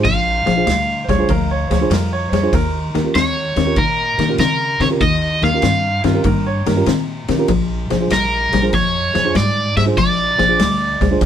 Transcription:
0.04 A#1 A#2 F3 F5, kick, ride
0.46 A#1 A#2 F3 G#4 C5, snare, ride
0.56 D4 F4 G#4 C5
0.67 D2 A#2 G3, snare, ride
1.04 D2 C5
1.09 A#2 G3 G#4 C5 C#5, kick, snare, ride
1.18 D4 F4 G#4 C5
1.29 D2 A#2 F3 A#4, kick, ride
1.51 C#5
1.68 D2 A#2 G#4 C5, ride
1.72 F3 C5 C#5, snare
1.81 D4 F4 G#4 C5
1.90 F2 A#2 G3 A#4, snare, ride
2.13 C#5
2.29 F2 G#4 C5
2.33 A#2 G3 C5 C#5, snare, ride
2.42 D4 F4 G#4 C5
2.53 D#2 D#3 A#3 A#4, kick, snare, ride
2.94 D#2 D#3 A#3 G4 A#4, snare, ride
3.04 C#4 F4 G4 A#4
3.14 D#2 D#3 C4 C#5, snare, ride
3.56 D#2 D#3 C4 G4 A#4, snare, ride
3.66 C#4 F4 G4 A#4
3.76 A#2 D#3 A#3 A#4, kick, ride
4.18 A#2 D#3 A#3 G4 A#4, snare, ride
4.28 C#4 F4 G4 A#4
4.38 C#3 D#3 C4 A#4, snare, ride
4.80 C#3 D#3 C4 G4 A#4 C#5, snare, ride
4.90 C#4 F4 G4 A#4
5.01 D#2 D#3 A#3 D#5, kick, ride
5.42 D#2 D#3 A#3 G4 A#4 F5, snare, ride
5.54 C#4 F4 G4 A#4
5.62 G2 D#3 C4, snare, ride
6.01 G2 D#3 C4 E4 G4, ride
6.05 F4 A#4, snare
6.13 C#4 F4 G4 A#4
6.24 G2 D#3 A#3 A#4, kick, ride
6.47 C#5
6.66 G2 D#3 A#3 G4 A#4, snare, ride
6.76 C#4 F4 G4 A#4
6.86 A#2 D#3 C4, snare, ride
7.28 A#2 D#3 C4 G4 A#4, snare, ride
7.38 C#4 F4 G4 A#4
7.48 A#1 A#2 F3, kick, ride
7.90 A#1 A#2 F3 G#4 C5, snare, ride
8.01 D4 F4 G#4 C5
8.10 A#1 A#2 G3 A#4, snare, ride
8.52 A#1 A#2 G3 G#4 C5, snare, ride
8.62 D4 F4 G#4 C5
8.73 F2 A#2 F3 C#5, kick, ride
9.14 F2 A#2 F3 G#4 C5, snare, ride
9.25 D4 F4 G#4 C5
9.35 G#2 A#2 G3 D5, snare, ride
9.77 G#2 A#2 G3 G#4 C5 E5, snare, ride
9.86 D4 F4 G#4 C5
9.97 A#1 A#2 F3 D5, kick, ride
10.38 A#1 A#2 F3 G#4 C5, snare, ride
10.48 D4 F4 G#4 C5
10.59 D2 A#2 G3, snare, ride
11.01 D2 A#2 G3 G#4 C5, kick, snare, ride
11.11 D4 F4 G#4 C5
11.21 D2 A#2 F3, kick, snare, ride

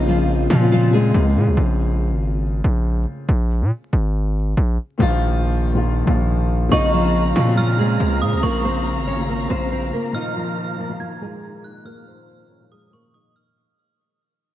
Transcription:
Already playing: A#1 C#3 A#3 C4 F4
0.07 F3 F4
0.50 A#2 F3 F4
0.59 C#3 A#3 C4
0.63 F4
0.72 F3 F4
0.91 C#3 G#3 A#3 C4 G#4
0.95 F4
1.14 C#2
1.36 A#2
1.47 C#2
1.57 A#1
2.11 G#1
2.64 A#1
3.29 A#1
3.61 A#2
3.93 G#1
4.57 A#1
4.98 A#1 A#2 D#3 F3 A#3
5.02 F4
5.73 A#2 D#3 F3 A#3
5.77 F4
6.05 A#1 A#2 D#3 F3 A#3
6.09 F4
6.69 A#1 C#3 A#3 C4 D#4 D#5 F5 A#5 C#6
6.73 F4
6.93 F3 F4
7.36 A#2 F3 F4
7.45 C#3 A#3 C4
7.49 F4
7.57 F3 F4 F6
7.77 C#3 G#3 A#3 C4 G#4
7.81 F4
8.00 C#2
8.22 A#2 D#6
8.33 C#2
8.41 A#1 C#3 A#3 C4 A#4 C#6
8.45 F4
8.64 C4 C5
8.97 G#1
9.07 C#4 C#5
9.16 C#3 A#3 C4
9.21 F4
9.29 A#3 A#4
9.47 A#1 C#3 A#3 C4 C5
9.51 F4
9.72 C4 C5
9.93 A#3 A#4
10.11 A#2 D#3 F3 A#3 D#4 A#4 D#5 F6
10.16 F4
10.36 F3 F4
10.79 F3 F4
10.88 A#2 D#3 F3 A#3
10.92 F4
11.00 F3 F4 G#6
11.20 A#2 D#3 F3 G#3 A#3 G#4
11.24 F4
11.64 F#6
11.84 A#2 D#3 F3 A#3 A#4 F6
11.88 F4
12.07 C4 C5
12.50 C#4 C#5
12.59 A#2 D#3 F3 A#3
12.63 F4
12.71 G#3 G#4 D#6
12.91 A#2 D#3 F3 A#3 A#4 C#6
12.95 F4
13.14 D#4 D#5 D#6
13.36 F6

